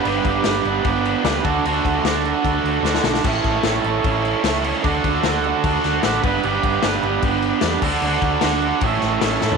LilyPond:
<<
  \new Staff \with { instrumentName = "Transistor combo organ" } { \time 4/4 \key d \major \tempo 4 = 150 << { r1 | r1 | r1 | r4. e''8 fis''8 a''8 b''4 |
r1 | r1 | } \\ { <g' b' d''>2.~ <g' b' d''>8 <fis' a' d''>8~ | <fis' a' d''>1 | <e' a' cis''>1 | <fis' a' d''>2.~ <fis' a' d''>8 <g' b' d''>8~ |
<g' b' d''>2.~ <g' b' d''>8 <fis' a' d''>8~ | <fis' a' d''>2 <e' a' cis''>2 | } >> }
  \new Staff \with { instrumentName = "Overdriven electric guitar" } { \time 4/4 \key d \major <g b d' b'>4 <g b d' b'>8 <b d' b'>4. <g b d' b'>8 <d d' fis' a'>8 | <d d' fis' a'>4 <d d' fis' a'>8 <d' fis' a'>4. <d d' fis' a'>8 <d' fis' a'>8 | <a, a cis' e' a'>4 <a, a cis' e' a'>8 <cis' e' a'>4. <a cis' e' a'>8 <cis' e' a'>8 | <d d' fis' a'>4 <d d' fis' a'>8 <d' fis' a'>4. <d d' fis' a'>8 <g b d' b'>8 |
<g b d' b'>4 <g b d' b'>8 <b d' b'>4. <g b d' b'>8 <d d' fis' a'>8 | <d d' fis' a'>4 <d d' fis' a'>8 <d' fis' a'>8 <a, a cis' e' a'>4 <a cis' e' a'>8 <cis' e' a'>8 | }
  \new Staff \with { instrumentName = "Fingered electric bass" } { \clef bass \time 4/4 \key d \major g,,8 g,,8 g,,8 g,,8 g,,4 cis,8 d,8 | d,8 d,8 d,4 d,8 d,8 d,8 b,,8 | a,,8 a,,8 a,,8 a,,8 a,,4 cis,4 | d,8 d,8 d,4 d,8 d,8 a,,8 g,,8 |
g,,8 g,,8 g,,8 g,,8 g,,4 e,8 d,8 | d,8 d,8 d,4 a,,8 a,,8 a,,8 a,8 | }
  \new DrumStaff \with { instrumentName = "Drums" } \drummode { \time 4/4 cymc8 <cymc bd>8 <cymc sn>8 cymc8 <cymc bd>8 cymc8 <cymc sn>8 <cymc bd>8 | cymc8 <cymc bd>8 <cymc sn>8 cymc8 <cymc bd>8 cymc8 sn16 sn16 sn16 sn16 | <cymc bd>8 <cymc bd>8 <cymc sn>8 cymc8 <cymc bd>8 cymc8 <cymc sn>8 cymc8 | <cymc bd>8 <cymc bd>8 <cymc sn>8 cymc8 <cymc bd>8 <cymc sn>8 <cymc sn>8 <cymc bd>8 |
cymc8 <cymc bd>8 <cymc sn>8 cymc8 <cymc bd>8 cymc8 <cymc sn>8 <cymc bd>8 | cymc8 <cymc bd>8 <cymc sn>8 cymc8 <cymc bd>8 <cymc sn>8 <cymc sn>8 sn16 tomfh16 | }
>>